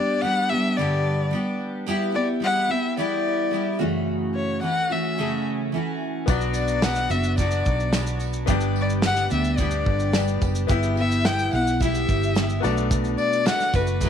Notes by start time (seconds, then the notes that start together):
Already playing: G3 B3 D4 G4 D5
0.22 G3 B3 D4 G4 F#5
0.50 B3 D4 G4 E5
0.54 G3
0.77 G2 D3 G3 B3 D4 G4 D5
1.31 G3 B3 D4 G4
1.86 G3 B3 E4 G4
2.12 B3 E4 G4 D5
2.40 G3 B3 E4 G4 F#5
2.68 B3 E4 G4 E5
2.97 G3 B3 E4 G4 D5
3.51 G3 B3 E4 G4
3.79 F#2 C#3 E3 A3 C#4 F#4
4.35 C#5
4.61 E3 A3 C#4 F#4 F#5
4.90 E3 A3 C#4 F#4 E5
5.18 F#2 C#3 E3 A3 C#4 F#4
5.72 E3 A3 C#4 F#4
6.26 B1 B2 F#3 B3 D4 F#4 D5, kick, tambourine, shaker
6.30 D4 F#4
6.41 shaker
6.54 D5, tambourine, shaker
6.68 shaker
6.82 F#3 B3 D4 F#4 F#5, snare, tambourine, shaker
6.95 snare, shaker
7.09 F#1 B3 D4 F#4 E5, tambourine, shaker
7.24 shaker
7.37 B2 F#3 B3 D4 F#4 D5, kick, tambourine, shaker
7.51 shaker
7.65 B1, kick, shaker
7.80 shaker
7.93 F#3 B3 D4 F#4, snare, tambourine, shaker
8.07 shaker
8.20 tambourine, shaker
8.33 shaker
8.46 G1 G2 D3 G3 B3 D4 G4, kick, shaker
8.50 D5
8.61 shaker
8.76 tambourine
8.81 D5
8.90 shaker
9.01 G3 B3 D4 G4, snare, tambourine, shaker
9.06 F#5
9.16 snare, shaker
9.28 D2 G3 B3 D4 G4, tambourine, shaker
9.33 E5
9.44 shaker
9.57 G2 D3 G3 B3 D4 G4 D5, kick, tambourine, shaker
9.71 shaker
9.86 G1, kick
10.00 shaker
10.12 G3 B3 D4 G4 D5, snare, tambourine, shaker
10.28 shaker
10.42 F#1, kick, tambourine, shaker
10.55 shaker
10.67 G1 G3 B3 E4 G4, kick, shaker
10.71 E5
10.83 shaker
10.96 B3 E4 G4 E5, tambourine
11.12 shaker
11.24 G3 B3 E4 G4 G5, snare, tambourine, shaker
11.39 shaker
11.52 B1 B3 E4 G4 F#5, tambourine
11.67 shaker
11.73 F#5
11.80 G3 B3 E4 G4 E5, kick, tambourine, shaker
11.95 shaker
12.09 G1, kick, shaker
12.23 shaker
12.34 G3 B3 E4 G4, snare, tambourine, shaker
12.49 shaker
12.60 B1 F#3 A3 B3 D4 F#4 A4 D5, tambourine, shaker
12.64 B2
12.77 shaker
12.91 kick, shaker
13.04 shaker
13.18 D5, tambourine
13.33 shaker
13.46 F#3 A3 D4 F#4 F#5, snare, tambourine, shaker
13.60 snare, shaker
13.73 F#1 A3 D4 F#4 B4, kick, tambourine, shaker
13.87 shaker
14.00 B2 F#3 A3 D4 F#4, kick, tambourine, shaker